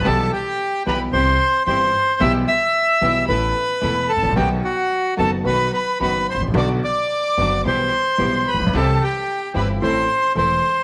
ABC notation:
X:1
M:4/4
L:1/16
Q:1/4=111
K:Em
V:1 name="Violin"
a2 g4 b2 c'4 c'4 | e'2 e'6 b6 a2 | g2 f4 a2 b2 b2 b2 c'2 | d'2 d'6 c'6 b2 |
a2 g4 b2 c'4 c'4 |]
V:2 name="Bandoneon"
A2 G4 B2 c4 c4 | e2 e6 B6 A2 | G2 F4 A2 B2 B2 B2 c2 | d2 d6 c6 B2 |
A2 G4 B2 c4 c4 |]
V:3 name="String section"
[B,EG]2 z4 [B,EG]2 [CEG]2 z2 [CEG]2 z2 | [B,EG]2 z4 [B,EG]2 [B,EA]2 z2 [B,EA]2 z2 | [B,^DF]2 z4 [B,DF]2 [B,DF]2 z2 [B,DF]2 z2 | [B,DF]2 z4 [B,DF]2 [B,EG]2 z2 [B,EG]2 z2 |
[CEG]2 z4 [CEG]2 [CEA]2 z2 [CEA]2 z2 |]
V:4 name="Grand piano" clef=bass
[B,,,B,,E,G,B,G]2 z4 [B,,,B,,E,G,B,G]2 [C,,C,E,G,CG]2 z2 [G,,,G,,E,G,CG]2 z2 | [B,,,B,,E,G,B,G]2 z4 [B,,,B,,E,G,B,G]2 [A,,,A,,E,A,B,A]2 z2 [E,,,E,,E,A,B,A]2 z/2 ^G,,,/2 A,,,/2 ^A,,,/2 | [B,,,B,,^D,F,B,F]2 z4 [F,,,F,,D,F,B,F]2 [B,,,B,,D,F,B,F]2 z2 [F,,,F,,D,F,B,F]2 z/2 ^G,,,/2 A,,,/2 ^A,,,/2 | [B,,,B,,D,F,B,F]2 z4 [F,,,F,,D,F,B,F]2 [B,,,B,,E,G,B,G]2 z2 [B,,,B,,E,G,B,G]2 z/2 A,,,/2 ^A,,,/2 B,,,/2 |
[C,,C,E,G,CG]2 z4 [G,,,G,,E,G,CG]2 [A,,,A,,E,A,CA]2 z2 [E,,,E,,E,A,CA]2 z2 |]
V:5 name="Upright bass" clef=bass
B,,,3/2 z4 z/2 B,,,3/2 z/2 C,,3/2 z2 z/2 G,,,3/2 z2 z/2 | B,,,3/2 z4 z/2 B,,,3/2 z/2 A,,,3/2 z2 z/2 E,,,3/2 z ^G,,,/2 A,,,/2 ^A,,,/2 | B,,,3/2 z4 z/2 F,,,3/2 z/2 B,,,3/2 z2 z/2 F,,,3/2 z ^G,,,/2 A,,,/2 ^A,,,/2 | B,,,3/2 z4 z/2 F,,,3/2 z/2 B,,,3/2 z2 z/2 B,,,3/2 z A,,,/2 ^A,,,/2 B,,,/2 |
C,,3/2 z4 z/2 G,,,3/2 z/2 A,,,3/2 z2 z/2 E,,,3/2 z2 z/2 |]